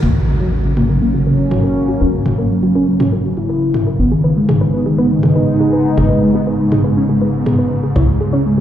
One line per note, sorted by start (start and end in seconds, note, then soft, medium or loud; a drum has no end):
0.03 1.98 F#1 medium
0.03 8.61 G#2 medium
0.03 8.61 C#3 medium
0.03 3.95 F#3 medium
0.03 0.10 A#3 medium
0.03 3.95 A#3 medium
0.03 3.95 C#4 medium
0.03 mid tom medium
0.03 impact medium
0.15 0.22 C#3 medium
0.15 0.25 A#4 medium
0.28 0.35 C#3 medium
0.40 0.47 F#3 medium
0.40 0.46 F#4 medium
0.52 0.59 C#3 medium
0.52 0.62 A#4 medium
0.64 0.72 C#3 medium
0.77 0.84 A#3 medium
0.77 0.83 F#4 medium
0.77 mid tom medium
0.89 0.97 C#3 medium
0.89 0.99 A#4 medium
1.02 1.09 A#3 medium
1.14 1.21 C#3 medium
1.14 1.21 F#4 medium
1.26 1.34 C#3 medium
1.26 1.36 A#4 medium
1.39 1.91 C#4 loud
1.51 1.58 F#4 medium
1.51 mid tom medium
1.64 1.73 A#4 medium
1.89 1.95 F#4 medium
2.01 3.97 F#1 medium
2.01 2.08 C#4 medium
2.01 2.10 A#4 medium
2.13 2.21 F#3 medium
2.26 2.33 F#3 medium
2.26 2.32 F#4 medium
2.26 mid tom medium
2.38 2.45 A#3 medium
2.38 2.48 A#4 medium
2.51 2.58 F#3 medium
2.63 2.70 F#3 medium
2.63 2.69 F#4 medium
2.75 2.83 C#4 medium
2.75 2.85 A#4 medium
2.88 2.95 F#3 medium
3.00 3.07 C#4 medium
3.00 3.06 F#4 medium
3.00 mid tom medium
3.12 3.20 F#3 medium
3.12 3.22 A#4 medium
3.25 3.32 F#3 medium
3.37 3.89 E4 medium
3.37 3.44 F#4 medium
3.50 3.59 A#4 medium
3.74 3.81 F#4 medium
3.74 mid tom medium
3.87 3.96 A#4 medium
3.99 5.95 G#1 medium
3.99 7.92 G#3 medium
3.99 4.06 B3 medium
3.99 7.92 B3 medium
3.99 7.92 D#4 medium
4.12 4.19 D#3 medium
4.12 4.18 G#4 medium
4.24 4.31 D#3 medium
4.24 4.34 B4 medium
4.37 4.44 G#3 medium
4.49 4.56 D#3 medium
4.49 4.55 G#4 medium
4.49 mid tom medium
4.61 4.69 D#3 medium
4.61 4.71 B4 medium
4.74 4.81 B3 medium
4.86 4.93 D#3 medium
4.86 4.92 G#4 medium
4.98 5.06 B3 medium
4.98 5.08 B4 medium
5.11 5.18 D#3 medium
5.23 5.31 D#3 medium
5.23 5.30 G#4 medium
5.23 mid tom medium
5.36 5.88 D#4 medium
5.36 5.45 B4 medium
5.60 5.67 G#4 medium
5.73 5.82 B4 medium
5.97 7.93 G#1 medium
5.97 6.05 D#4 medium
5.97 6.04 G#4 medium
5.97 mid tom medium
6.10 6.17 G#3 medium
6.10 6.20 B4 medium
6.23 6.30 G#3 medium
6.35 6.42 B3 medium
6.35 6.41 G#4 medium
6.47 6.54 G#3 medium
6.47 6.57 B4 medium
6.60 6.67 G#3 medium
6.72 6.79 D#4 medium
6.72 6.78 G#4 medium
6.72 mid tom medium
6.84 6.92 G#3 medium
6.84 6.94 B4 medium
6.97 7.04 C#4 medium
7.09 7.16 G#3 medium
7.09 7.16 G#4 medium
7.22 7.29 G#3 medium
7.22 7.31 B4 medium
7.34 7.86 B3 medium
7.46 7.53 G#4 medium
7.46 mid tom medium
7.59 7.68 B4 medium
7.84 7.90 G#4 medium
7.96 8.61 C#2 medium
7.96 8.61 C#3 medium
7.96 8.61 C#4 medium
7.96 8.03 E4 medium
7.96 8.61 G#4 medium
7.96 8.05 C#5 medium
7.96 8.61 E5 medium
7.96 mid tom medium
8.08 8.16 G#3 medium
8.21 8.28 G#3 medium
8.21 8.27 G#4 medium
8.33 8.40 C#4 medium
8.33 8.43 C#5 medium
8.46 8.53 G#3 medium